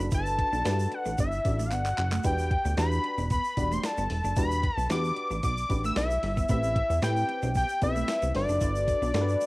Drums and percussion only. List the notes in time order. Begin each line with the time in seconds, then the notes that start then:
0.00 shaker
0.11 kick, closed hi-hat, shaker
0.26 shaker
0.39 kick, closed hi-hat
0.53 shaker
0.65 snare, closed hi-hat, shaker
0.79 shaker
0.92 closed hi-hat
1.06 shaker
1.18 kick, closed hi-hat, shaker
1.32 shaker
1.45 kick, closed hi-hat, shaker
1.59 shaker
1.71 clap, closed hi-hat, shaker
1.85 clap, shaker
1.98 clap, closed hi-hat
2.12 clap, shaker
2.24 kick, closed hi-hat, shaker
2.38 shaker
2.51 kick, closed hi-hat
2.65 shaker
2.77 snare, closed hi-hat, shaker
2.92 shaker
3.04 closed hi-hat
3.18 shaker
3.30 kick, closed hi-hat, shaker
3.44 shaker
3.57 kick, closed hi-hat, shaker
3.72 shaker
3.84 snare, closed hi-hat, shaker
3.98 shaker
4.10 open hi-hat
4.25 shaker
4.36 kick, closed hi-hat, shaker
4.51 shaker
4.63 kick, closed hi-hat
4.78 shaker
4.90 snare, closed hi-hat, shaker
5.04 shaker
5.16 closed hi-hat
5.31 shaker
5.43 kick, closed hi-hat, shaker
5.57 shaker
5.70 kick, closed hi-hat, shaker
5.84 shaker
5.96 snare, closed hi-hat, shaker
6.10 shaker
6.23 open hi-hat
6.37 kick, shaker
6.48 kick, closed hi-hat, shaker
6.63 shaker
6.76 kick, closed hi-hat
6.90 shaker
7.02 snare, closed hi-hat, shaker
7.16 shaker
7.29 closed hi-hat
7.43 shaker
7.55 kick, closed hi-hat, shaker
7.69 shaker
7.82 kick, closed hi-hat, shaker
7.96 shaker
8.08 snare, closed hi-hat, shaker
8.22 shaker
8.35 open hi-hat
8.49 shaker
8.61 kick, closed hi-hat, shaker
8.76 shaker
8.88 kick, closed hi-hat, shaker
9.03 shaker
9.14 snare, closed hi-hat, shaker
9.29 shaker
9.41 closed hi-hat, shaker